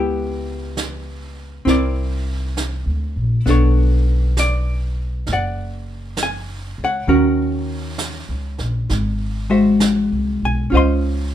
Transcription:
Already playing: upright bass C#2, hollow-body jazz guitar B3 E4 G4 E5
0.77 snare, hi-hat pedal
1.65 upright bass C2, hollow-body jazz guitar C4 E4 A#4, brush sweep, snare
1.70 hollow-body jazz guitar D5
2.57 snare, hi-hat pedal
2.86 upright bass D2
3.16 upright bass A#1
3.46 upright bass B1, hollow-body jazz guitar B3 D4 A4, brush sweep, snare
3.50 hollow-body jazz guitar C#5
4.37 hollow-body jazz guitar D5, snare, hi-hat pedal
5.27 upright bass F#1, brush sweep, snare
5.33 hollow-body jazz guitar D5 F#5
6.17 snare, hi-hat pedal
6.23 hollow-body jazz guitar G#5
6.78 upright bass C#2
6.84 hollow-body jazz guitar C#5 F#5
7.07 upright bass D#2, hollow-body jazz guitar D#3 C#4 F#4 A#4, brush sweep
7.98 snare, hi-hat pedal
8.29 upright bass C#2
8.58 upright bass A#1, snare
8.89 upright bass G#1, brush sweep, snare
9.50 hollow-body jazz guitar G#3 F#4 C5 E5
9.80 snare, hi-hat pedal
10.12 upright bass C2
10.42 upright bass B1, hollow-body jazz guitar G#5
10.70 upright bass C#2, hollow-body jazz guitar C#4 F4 C5, brush sweep
10.75 hollow-body jazz guitar D#5 C6

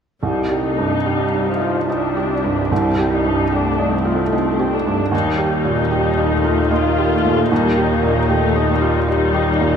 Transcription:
0.23 felt piano C2, cello section C2, viola section G3 D#4
0.51 felt piano G4
0.65 viola section A3
0.78 felt piano G2
1.06 viola section G3, felt piano G4
1.33 felt piano D#4
1.48 viola section F3
1.61 felt piano F4
1.89 viola section G3 D4, felt piano D#4
2.17 felt piano G4
2.44 felt piano G2
2.72 felt piano C2, viola section G3 C4
2.98 felt piano G4
3.12 viola section D#4
3.25 felt piano G2
3.52 viola section A3 D4, felt piano G4
3.78 felt piano D#4
3.92 viola section C4
4.05 felt piano F4
4.32 viola section C4, felt piano D#4
4.59 felt piano G4
4.73 viola section D4
4.86 felt piano G2
5.11 felt piano D#2, cello section D#2, viola section G3 D#4
5.38 felt piano G4
5.52 viola section D#4
5.65 felt piano A#2
5.91 viola section G3, felt piano G4
6.17 felt piano D#4
6.31 viola section A3
6.44 felt piano F4
6.71 viola section A#3 F4, felt piano D#4
6.98 felt piano G4
7.11 viola section A3
7.25 felt piano A#2
7.51 felt piano D#2, viola section G3 D#4
7.77 felt piano G4
7.91 viola section A#3
8.03 felt piano A#2
8.30 viola section A3, felt piano G4
8.55 felt piano D#4
8.70 viola section G3
8.81 felt piano F4
9.08 viola section G3 D#4, felt piano D#4
9.34 felt piano G4
9.61 felt piano A#2

